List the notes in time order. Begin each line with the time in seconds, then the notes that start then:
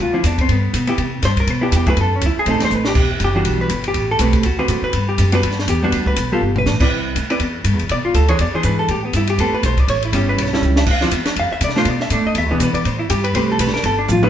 0.00 D2 F4
0.13 D3 F3 C4 E4
0.24 E2 D4, kick, hi-hat pedal, ride
0.38 C4, kick, ride
0.48 G2 B3, kick, ride
0.73 B2, kick, hi-hat pedal, ride
0.87 B3 E4 G4, ride
0.98 C3, kick, ride
1.22 G2 C5, kick, snare, hi-hat pedal, ride
1.37 A#4, kick, ride
1.47 B2 B4, kick, ride
1.61 B3 D4 E4 G4
1.72 E2, kick, hi-hat pedal, ride
1.77 G4
1.86 F#3 A3 E4 G#4 B4, kick, ride
1.96 F#2, ride
2.01 A4
2.16 C#4
2.21 C#2, kick, hi-hat pedal, ride
2.26 E4
2.39 G#4
2.46 B1 A3 C4 D#4, kick, ride
2.51 A4
2.55 A1
2.60 F#1, snare, ride
2.65 C5
2.70 A1 B4, hi-hat pedal
2.85 G4, snare
2.95 E1, kick, crash
3.20 F#1, kick, hi-hat pedal, ride
3.24 G4
3.35 E3 G3 D4 F#4
3.45 B1, kick, ride
3.61 B4
3.69 G1, kick, hi-hat pedal, ride
3.84 G4, ride
3.94 A1, kick, ride
4.11 A4
4.19 B1 A3 C4 G4 B4, kick, hi-hat pedal, ride
4.33 kick, ride
4.43 D2 F#4, kick, ride
4.59 D3 C4 F#4 B4
4.68 A2, kick, hi-hat pedal, ride
4.82 B4, muted upright bass stroke
4.93 G2, kick, ride
5.09 G4
5.18 F#2, kick, hi-hat pedal, ride
5.32 G3 B3 D4 F#4 B4, ride
5.42 G2, kick, ride
5.51 snare
5.59 snare
5.67 E2 G4, kick, hi-hat pedal, ride
5.83 G3 B3 D4 F#4
5.92 D2, kick, ride
6.06 B4, kick
6.16 B1, hi-hat pedal, ride
6.32 G3 B3 F4 G4 A4
6.41 G1
6.56 B4, floor tom
6.66 A1, snare, hi-hat pedal
6.80 C4 E4 B4 D5, kick, crash
6.90 C2
7.15 D2, kick, hi-hat pedal, ride
7.30 C4 E4 B4 D5, ride
7.39 E2, kick, ride
7.64 G2, kick, hi-hat pedal, ride
7.73 E2
7.79 C2, ride
7.89 B2 D5, kick, ride
8.05 F4, muted upright bass stroke
8.14 D2 A4, kick, hi-hat pedal, ride
8.28 E3 D4 G#4 C5 C#5, ride
8.39 E2 D5, kick, ride
8.54 E3 D4 G#4 C5, muted upright bass stroke
8.63 G#2 B4, kick, hi-hat pedal, ride
8.79 A4
8.88 A2 G4, kick, ride
9.05 B3
9.13 G2 E4, kick, hi-hat pedal, ride
9.27 G4, ride
9.38 E2 A3 C4 G4 A4 B4, kick, ride
9.52 B4, muted upright bass stroke
9.63 B1 C5, kick, hi-hat pedal, ride
9.77 D5, kick, ride
9.88 A1 C#5, kick, ride
10.03 E4, ride
10.13 G1 G3 C#4 E4 G4, kick, hi-hat pedal, ride
10.29 B4
10.37 B1 C#5, kick, ride
10.46 snare
10.53 G3 C#4 E4, snare
10.62 C#2, hi-hat pedal
10.76 E5, snare
10.86 D2, kick, crash
10.91 F5
11.01 D3 F3 C4 E4, snare
11.11 E2, kick, hi-hat pedal, ride
11.26 muted upright bass stroke, snare, ride
11.36 F2 F5, kick, ride
11.50 E5, muted upright bass stroke
11.61 C3 D5, kick, hi-hat pedal, ride
11.69 snare
11.76 A3 D4 F4 C5, snare
11.85 B2 D5, kick, ride
12.00 E5, snare
12.10 A2 A3 D4, kick, hi-hat pedal, ride
12.25 D#5, muted upright bass stroke
12.35 E2 E5, kick, ride
12.43 D2
12.50 B1 E3 B3 D4 G#4
12.60 B2 B4, kick, hi-hat pedal, ride
12.73 D5, muted upright bass stroke, ride
12.85 A2 C5, kick, ride
12.99 E4
13.10 G2 G4, kick, hi-hat pedal, ride
13.24 B4, ride
13.34 C2 A3 C4 G4 B4 C5, kick, ride
13.52 A4
13.59 B1 B4, kick, hi-hat pedal, ride
13.68 snare
13.73 A#4, muted upright bass stroke, snare
13.83 G1 A4, kick, ride
13.99 D4
14.08 A1 F4, hi-hat pedal, mid tom
14.23 F3 B3 E4 B4, mid tom